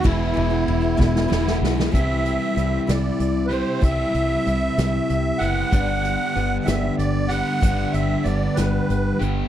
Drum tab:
RD |x-x-x-------|------------|------------|------------|
HH |------------|x-x-x-x-x-x-|x-x-x-x-x-x-|x-x-x-x-x-x-|
SD |------oooooo|------o-----|------o-----|------o-----|
BD |o-----o-----|o-----------|o-----------|o-----------|

RD |------------|
HH |x-x-x-x-x-x-|
SD |------o-----|
BD |o-----------|